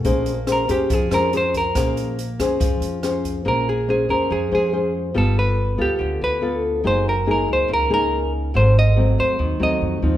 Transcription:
<<
  \new Staff \with { instrumentName = "Hollow-body jazz guitar" } { \time 4/4 \key bes \minor \tempo 4 = 141 r4 bes'8 g'8 aes'8 bes'8 c''8 bes'8~ | bes'4 r2. | bes'8 aes'8 aes'8 bes'8 aes'8 aes'4 r8 | a'8 b'4 g'4 b'4 r8 |
c''8 bes'8 bes'8 c''8 bes'8 bes'4 r8 | c''8 ees''4 c''4 ees''4 r8 | }
  \new Staff \with { instrumentName = "Nylon-string guitar" } { \time 4/4 \key bes \minor << { <des' aes' c''>8 r8 <des' aes' c''>8 <des' aes' c''>4 <des' aes' c''>8 <des' aes' c''>8 r8 | <des' aes' c''>4 r8 <des' aes' c''>4. <des' aes' c''>4 | <des' aes' c''>8 r8 <des' aes' c''>8 <des' aes' c''>4 <des' aes' c''>8 <des' aes' c''>4 | <b f' a'>4. <b f' a'>4. <b f' a'>4 |
<bes ees' aes'>8 r8 <bes ees' aes'>4. <bes ees' aes'>4. | <ges a c'>8 r8 <ges a c'>4. <ges a c'>4 <f c' ees'>8 | } \\ { bes2 f2 | bes2 f2 | bes2 f2 | g2 d2 |
ges2 des2 | aes,2 ees2 | } >> }
  \new Staff \with { instrumentName = "Upright bass" } { \clef bass \time 4/4 \key bes \minor bes,,4. f,8 f,8 f,4. | bes,,4. f,8 f,8 f,4. | bes,,4. f,8 f,8 f,4. | g,,4. d,8 d,8 d,4. |
ges,,4. des,8 des,8 des,4. | aes,,4. ees,8 ees,8 ees,8 f,8 ees,8 | }
  \new DrumStaff \with { instrumentName = "Drums" } \drummode { \time 4/4 <hh bd>8 hh8 <hh ss>8 <hh bd>8 <hh bd>8 <hh ss>8 hh8 <hh bd>8 | <hh bd ss>8 hh8 hh8 <hh bd ss>8 <hh bd>8 hh8 <hh ss>8 <hh bd>8 | r4 r4 r4 r4 | r4 r4 r4 r4 |
r4 r4 r4 r4 | r4 r4 r4 r4 | }
>>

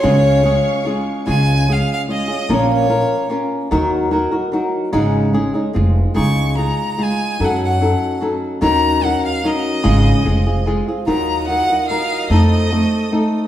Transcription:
<<
  \new Staff \with { instrumentName = "Violin" } { \time 3/4 \key des \major \tempo 4 = 147 des''2 r4 | aes''4 f''8 f''8 ees''4 | des''8 des''4. r4 | r2. |
r2. | des'''4 bes''4 aes''4 | ges''8 ges''4. r4 | bes''4 ges''8 f''8 ees''4~ |
ees''2 r4 | bes''4 ges''4 f''4 | ees''8 ees''4. r4 | }
  \new Staff \with { instrumentName = "Violin section" } { \time 3/4 \key des \major << { <f'' des'''>2. | r2. | r2. | r2. |
r2. | r2. | r2. | r2. |
r2. | <ees'' ees'''>2.~ | <ees'' ees'''>2. | } \\ { aes'2. | r2. | r2. | r2. |
r2. | r2. | r2. | r2. |
r2. | ees'2. | a'2. | } >> }
  \new Staff \with { instrumentName = "Nylon-string guitar" } { \time 3/4 \key des \major <des aes des' f' aes'>4 <aes des' f' aes'>4 <aes des' f' aes'>4 | <des aes des' f' aes'>4 <aes des' f' aes'>4 <aes des' f' aes'>8 <des' f' aes'>8 | <bes, f bes des' f' bes'>4 <bes des' f' bes'>4 <bes des' f' bes'>4 | <ees ges ees' ges' bes'>4 <ges ees' ges' bes'>8 <ees' ges' bes'>8 <ges ees' ges' bes'>4 |
<aes, des aes des' ees' aes'>4 <aes des' ees' aes'>8 <aes des' ees' aes'>8 <aes c' f' aes'>4 | <des aes ees' f' aes'>4 <aes ees' f' aes'>4 <aes ees' f' aes'>4 | <ges des' ees' a'>4 <ges des' ees' a'>4 <ges des' ees' a'>4 | <ees ges des' ees' bes'>4 <ges des' ees' bes'>4 <ges des' ees' bes'>4 |
<aes, des aes des' f' aes'>4 <aes c' f' aes'>8 <c' f' aes'>8 <aes c' f' aes'>8 <c' f' aes'>8 | <ees ges ees' f' bes'>4 <ges ees' f' bes'>8 <ees' f' bes'>8 <ges ees' f' bes'>4 | <f a c' ees' a'>4 <a c' ees' a'>4 <a c' ees' a'>4 | }
  \new Staff \with { instrumentName = "Upright bass" } { \clef bass \time 3/4 \key des \major des,2 r4 | des,2 r4 | bes,,2 r4 | ees,2 r4 |
aes,,2 f,,4 | des,2 r4 | ges,2 r4 | ees,2 r4 |
aes,,4 f,,2 | ees,2 r4 | f,2 r4 | }
>>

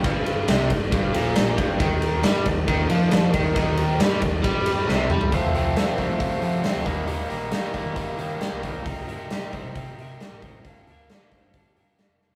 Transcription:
<<
  \new Staff \with { instrumentName = "Electric slide guitar" } { \time 4/4 \key ees \lydian \tempo 4 = 136 r1 | r1 | r1 | r1 |
r1 | f''8 bes'8 g'8 c''8 f''8 bes'8 g'8 c''8 | f''8 bes'8 g'8 c''8 f''8 bes'8 g'8 r8 | }
  \new Staff \with { instrumentName = "String machine" } { \time 4/4 \key ees \lydian r1 | <bes ees' bes' ees''>1~ | <bes ees' bes' ees''>1 | r1 |
r1 | r1 | r1 | }
  \new Staff \with { instrumentName = "Overdriven electric guitar" } { \clef bass \time 4/4 \key ees \lydian g,4 c8 g,8 g,8 bes,4 g,8 | ees4 g8 ees8 ees8 f4 ees8 | ees4 g8 ees8 g4 c8 g8 | <f a c' f'>8 <f a c' f'>8 <f a c' f'>8 <f a c' f'>8 <f a c' f'>8 <f a c' f'>8 <f a c' f'>8 <ees g bes ees'>8 |
<ees g bes ees'>8 <ees g bes ees'>8 <ees g bes ees'>8 <ees g bes ees'>8 <ees g bes ees'>8 <ees g bes ees'>8 <ees g bes ees'>8 <ees g bes ees'>8 | <c g c' ees'>8 <c g c' ees'>8 <c g c' ees'>8 <c g c' ees'>8 <c g c' ees'>8 <c g c' ees'>8 <c g c' ees'>8 <c g c' ees'>8 | <g, d g bes d'>8 <g, d g bes d'>8 <g, d g bes d'>8 <g, d g bes d'>8 <g, d g bes d'>8 <g, d g bes d'>8 <g, d g bes d'>8 <g, d g bes d'>8 | }
  \new Staff \with { instrumentName = "Overdriven electric guitar" } { \clef bass \time 4/4 \key ees \lydian g,4 c8 g,8 g,8 bes,4 g,8 | ees4 g8 ees8 ees8 f4 ees8 | ees4 g8 ees8 g4 c8 g8 | <f, c f a c'>8 <f, c f a c'>8 <f, c f a c'>8 <f, c f a c'>8 <f, c f a c'>8 <f, c f a c'>8 <f, c f a c'>8 <ees g bes ees'>8 |
<ees g bes ees'>8 <ees g bes ees'>8 <ees g bes ees'>8 <ees g bes ees'>8 <ees g bes ees'>8 <ees g bes ees'>8 <ees g bes ees'>8 <ees g bes ees'>8 | r1 | r1 | }
  \new Staff \with { instrumentName = "Picked electric bass" } { \clef bass \time 4/4 \key ees \lydian g,,4 c,8 g,,8 g,,8 bes,,4 g,,8 | ees,4 g,8 ees,8 ees,8 f,4 ees,8 | ees,4 g,8 ees,8 g,4 c,8 g,8 | f,8 c,8 r8. f8. f8 r16 d,16 ees,8~ |
ees,8 bes,,8 r8. ees8. ees8 r16 c,8. | c,8 g,8 r8. c8. c8 r16 a,,8. | g,,8 d,8 r8. g,8. g,8 r16 f,,8. | }
  \new DrumStaff \with { instrumentName = "Drums" } \drummode { \time 4/4 <bd cymr>8 cymr8 <cymr sn>8 <bd cymr>8 <bd cymr>8 cymr8 <cymr sn>8 <bd cymr>8 | <bd cymr>8 cymr8 <cymr sn>8 <bd cymr>8 <bd cymr>8 cymr8 <cymr sn>8 <bd cymr>8 | <bd cymr>8 cymr8 <cymr sn>8 <bd cymr>8 <bd cymr>8 cymr8 sn8 toml16 tomfh16 | <hho bd>8 hho8 <hho sn>8 <hho bd>8 <hho bd>8 hho8 <hho sn>8 <hho bd>8 |
hho8 hho8 <hho sn>8 <hho bd>8 <hho bd>8 hho8 <hho sn>8 <hho bd>8 | <hho bd>8 hho8 <hho sn>8 <hho bd>8 <hho bd>8 hho8 <hho sn>8 <hho bd>8 | <hho bd>8 hho8 <hho sn>8 <hho bd>8 <hho bd>8 hho8 <hho sn>8 sn16 tomfh16 | }
>>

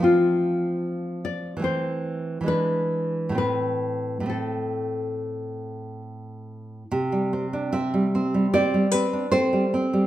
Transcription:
<<
  \new Staff \with { instrumentName = "Nylon-string guitar" } { \time 4/4 \key a \minor \tempo 4 = 73 f'4. d''8 c''4 b'4 | b'4 a'2 r4 | \key c \major r2 g'8 b'8 a'4 | }
  \new Staff \with { instrumentName = "Nylon-string guitar" } { \time 4/4 \key a \minor << { <f a c'>2 <e a c'>4 <e gis d'>4 | <a, a c'>4 <a, a c'>2. | \key c \major r4 e''4 d''4 c''4 | } \\ { r1 | r1 | c16 g16 c'16 d'16 c'16 g16 c'16 g16 c'16 g16 c'16 d'16 c'16 g16 c'16 g16 | } >> }
>>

